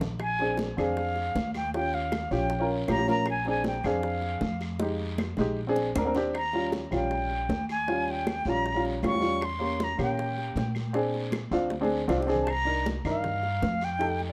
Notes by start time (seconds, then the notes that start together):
Already playing: A#1 G3 A3 D#4
0.01 low bongo, low conga, short guiro
0.20 G#5, high bongo, high conga, long guiro, claves
0.39 C4 D4 G#4, high bongo, high conga
0.57 high bongo, high conga, short guiro
0.77 F2 C4 D4 G#4 F5, high conga, low conga, short guiro, claves
0.97 high bongo, high conga, long guiro
1.16 high bongo, high conga
1.35 D#2, high bongo, low bongo, high conga, short guiro
1.54 G5, high bongo, high conga, short guiro, claves
1.74 C#4 F4 G4 G5, high bongo, high conga, long guiro
1.93 F5, high bongo, high conga
2.12 high bongo, high conga, short guiro, claves
2.31 A#1 C#4 F4 G4 G5, high conga, short guiro
2.50 high bongo, high conga, long guiro
2.60 C#4 F4 A#4
2.69 high bongo, high conga
2.88 A#1 C#4 F4 G4 A#5, high bongo, low bongo, high conga, short guiro, claves
2.97 C#4 F4 G4
3.07 C#4 F4 A#4 A#5, high bongo, high conga, short guiro
3.26 high bongo, long guiro, claves
3.30 G#5
3.45 C4 D4 G#4, high bongo, high conga
3.50 G#5
3.64 G5, high bongo, high conga, short guiro
3.84 F2 C4 D4 G#4 F5, high conga, low conga, short guiro, claves
4.03 high bongo, high conga, long guiro
4.22 high bongo, high conga
4.41 F2, high bongo, low bongo, high conga, short guiro
4.61 high bongo, short guiro, claves
4.79 G#3 D#4 G4, high bongo, high conga, long guiro
5.00 high conga
5.18 high bongo, high conga, short guiro, claves
5.37 A#1 G#3 D#4 G4, low bongo, high conga, short guiro
5.57 high conga, long guiro
5.67 C4 D4 G#4
5.76 low bongo, high conga
5.95 D#2 C4 D4 A#4, low bongo, high conga, short guiro, claves
6.05 C4 D4 A#4
6.15 C4 D4 G4, low bongo, short guiro
6.34 A#5, high bongo, high conga, long guiro, claves
6.53 G3 C#4 F4, high bongo, high conga
6.72 high bongo, high conga, short guiro
6.91 A#1 G3 C#4 F4 G5, high conga, low conga, short guiro, claves
7.11 high bongo, high conga, long guiro
7.30 high bongo, high conga
7.49 D#2, high bongo, low bongo, high conga, short guiro
7.69 G#5, high bongo, short guiro, claves
7.88 G3 C#4 F4, high bongo, high conga, long guiro
8.07 G5, high bongo, high conga
8.27 high bongo, high conga, short guiro, claves
8.45 A#1 G3 C#4 F4, high conga, short guiro
8.49 A#5
8.64 high bongo, high conga, long guiro
8.74 G3 C#4 F4
8.85 high bongo, high conga
9.02 E2 G3 C#4 F4, high bongo, low bongo, high conga, short guiro, claves
9.07 C#6
9.12 G3 C#4 F4
9.20 G3 C#4 F4, high bongo, high conga, short guiro
9.41 C6, high bongo, high conga, long guiro, claves
9.59 A#3 C#4 G4, high bongo, high conga
9.80 A#5, high bongo, high conga, short guiro
9.98 A#2 A#3 C#4 G4, high conga, low conga, short guiro, claves
10.03 G5
10.18 high bongo, high conga, long guiro
10.38 high bongo, high conga
10.55 A#2, high bongo, low bongo, high conga, short guiro
10.75 high bongo, high conga, short guiro, claves
10.93 C4 D4 G#4, high bongo, long guiro
11.14 high bongo, high conga
11.32 high bongo, high conga, short guiro, claves
11.51 D2 C4 D4 F4, high conga, short guiro
11.70 high bongo, high conga, long guiro
11.81 C4 D4 G#4, high conga
11.90 high bongo
12.08 C2 C4 D4 F4, high bongo, low bongo, low conga, short guiro, claves
12.17 C4 D4 G4
12.22 low conga
12.27 C4 D4 G#4, high bongo, short guiro
12.35 low conga
12.43 A5
12.47 A#5, high bongo, high conga, long guiro, claves
12.65 D4 D#4 A#4, high bongo, high conga
12.86 high bongo, high conga, short guiro
13.05 G2 D4 D#4 A#4 F5, high conga, low conga, short guiro, claves
13.24 high bongo, high conga, low conga, long guiro
13.43 high bongo, high conga
13.62 F2, high bongo, low bongo, high conga, short guiro
13.81 G5, high bongo, short guiro, claves
13.99 D#4 G4 A4, high bongo, high conga, long guiro
14.20 high bongo, high conga